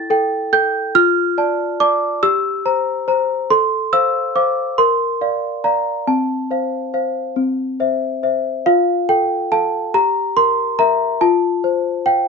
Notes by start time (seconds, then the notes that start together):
Already playing: E4 A4 G5 C#6 A6
0.10 A4 G5
0.53 A4 G5 G6
0.95 F4 F6
1.38 D5 A5
1.80 D5 A5 D6
2.23 G4 E6
2.65 C5 A#5
3.08 C5 A#5
3.50 A4 C6
3.93 C5 F5 E6
4.36 C5 F5 D6
4.78 A#4 C6
5.21 D5 F5
5.64 D5 F5 A#5
6.07 C4 A5
6.51 C5 F5
6.94 C5 F5
7.36 C4
7.80 C5 E5
8.23 C5 E5
8.66 F4 F5
9.09 A4 G5
9.52 A4 F5 A5
9.94 G4 A#5
10.37 A#4 C6
10.79 A#4 E5 A#5
11.21 F4 A5
11.64 C5
12.06 F5 G5